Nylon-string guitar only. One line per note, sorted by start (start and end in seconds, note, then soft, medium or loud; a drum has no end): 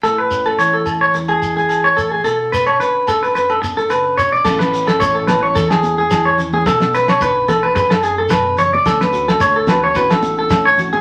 0.04 1.14 A2 medium
0.32 2.27 C#4 soft
0.58 2.21 E3 medium
0.86 muted nylon-string guitar stroke soft
1.13 1.69 E2 medium
1.43 2.22 G#3 soft
1.70 1.97 G#2 medium
1.96 2.24 A2 medium
2.24 2.80 B2 medium
2.52 4.42 C#4 soft
2.79 4.45 D3 medium
3.09 4.43 G#4 medium
3.36 4.43 F#2 medium
3.64 4.43 B3 soft
3.90 4.18 C#3 medium
4.19 4.44 B2 medium
4.45 5.55 A2 medium
4.45 5.00 G#3 medium
4.73 5.28 C#4 medium
5.00 6.09 E3 medium
5.00 6.10 G#3 medium
5.29 6.38 C#4 medium
5.55 6.66 E2 medium
5.55 6.63 G#4 medium
6.10 6.63 E3 medium
6.10 6.63 G#3 medium
6.38 6.69 C#4 medium
6.66 7.21 B2 medium
6.66 7.20 B3 medium
6.94 7.47 C#4 medium
7.20 8.84 D3 medium
7.20 8.83 B3 medium
7.48 muted nylon-string guitar stroke medium
7.76 8.83 F#2 medium
7.76 8.83 G#4 medium
8.30 8.57 B2 medium
8.58 8.85 C#3 medium
8.85 11.01 D3 medium
8.85 9.41 C#4 medium
9.13 9.69 F#4 medium
9.40 10.50 A3 medium
9.40 muted nylon-string guitar stroke medium
9.70 9.96 F#4 medium
9.95 11.01 A2 medium
9.95 10.78 F#4 medium
10.51 11.01 A3 medium
10.51 11.01 C#4 medium
10.79 11.01 F#4 medium